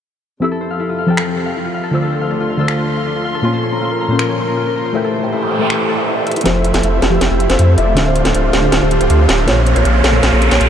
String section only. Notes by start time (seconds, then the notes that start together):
0.42 F2 C3 A4
1.93 D2 D3 F4 C6
3.44 A#2 F3 C#4
4.95 A2 E3 G4 C5
6.46 F3 C4 A4 E5
7.97 D3 A3 F4
9.48 C3 C#3 A#3